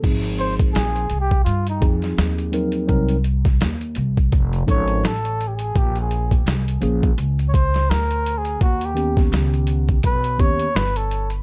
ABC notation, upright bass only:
X:1
M:4/4
L:1/8
Q:"Swing 16ths" 1/4=84
K:Ab
V:1 name="Upright bass" clef=bass
A,,,2 B,,, C,, G,, F,, E,,2 | C,,2 E,, C,, F,,, ^G,,, =A,,,2 | B,,,2 C,, B,,, D,,2 =D,,2 | E,,2 D,,2 =B,,, E,, G,,,2 |]